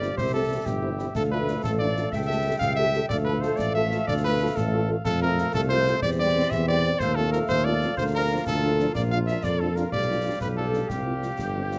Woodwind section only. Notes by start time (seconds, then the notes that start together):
Already playing: G4 F5
0.19 E5
1.16 A4 F5
2.13 G5
3.09 A4 F5
5.04 A4 F5
6.03 G4 C5
7.00 A4 F5
7.98 F4
8.96 F5
9.93 G4
10.90 F5